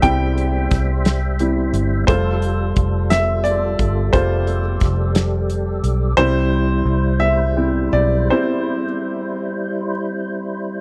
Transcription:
<<
  \new Staff \with { instrumentName = "Tonewheel organ" } { \time 6/8 \key c \major \tempo 4. = 58 << { c''2. | a'2.~ | a'2. | c''2. |
c''2. | } \\ { e''2. | f'2. | g'2. | e'2.~ |
e'2. | } >> }
  \new Staff \with { instrumentName = "Tonewheel organ" } { \clef bass \time 6/8 \key c \major g2.~ | g2.~ | g2. | g2.~ |
g2. | }
  \new Staff \with { instrumentName = "Upright piano" } { \time 6/8 \key c \major << { g''4. r4. | c''4. e''8 d''4 | c''4. r4. | c''4 r8 e''4 d''8 |
c''2 r4 | } \\ { <g c' e'>2 <g c' e'>8 r8 | <g a f'>4. r4. | <g a f'>8 r2 r8 | <g c' e'>4. r8 <g c' e'>8 r8 |
<g c' e'>8 r2 r8 | } >> }
  \new Staff \with { instrumentName = "Fingered electric bass" } { \clef bass \time 6/8 \key c \major c,4 c,4. g,,8 | f,,4 f,,4. g,,8 | f,,4 f,,4. b,,8 | c,4 c,4. b,,8 |
r2. | }
  \new DrumStaff \with { instrumentName = "Drums" } \drummode { \time 6/8 <hh bd>8 hh8 <hh bd sn>8 <hh sn>8 hh8 hh8 | <hh bd>8 hh8 <hh bd>8 <hh sn>8 hh8 <hh bd>8 | <hh bd>8 hh8 <hh bd sn>8 <hh sn>8 hh8 hh8 | r4. r4. |
r4. r4. | }
>>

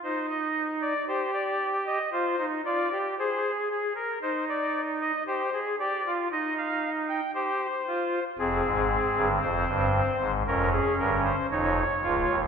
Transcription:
<<
  \new Staff \with { instrumentName = "Pipe organ" } { \time 4/4 \key f \minor \tempo 4 = 58 << { c''16 ees''8 d''16 c''16 d''8 ees''16 c''8 d''8 c''8 aes'16 bes'16 | c''16 d''8 ees''16 c''8 d''8 ees''16 f''8 g''16 c''4 | aes'4 c''4 bes'16 aes'16 bes'16 c''16 des''4 | } \\ { ees'4 g'4 f'16 ees'16 f'16 g'16 aes'4 | ees'4 g'16 aes'16 g'16 f'16 ees'4 g'8 f'8 | c'2 des'4 ees'8 f'8 | } >> }
  \new Staff \with { instrumentName = "Pipe organ" } { \clef bass \time 4/4 \key f \minor r1 | r1 | <f,, f,>16 <aes,, aes,>8 <g,, g,>16 <f,, f,>16 <g,, g,>8 <aes,, aes,>16 <f,, f,>8 <g,, g,>8 <f,, f,>8 <des,, des,>16 <ees,, ees,>16 | }
>>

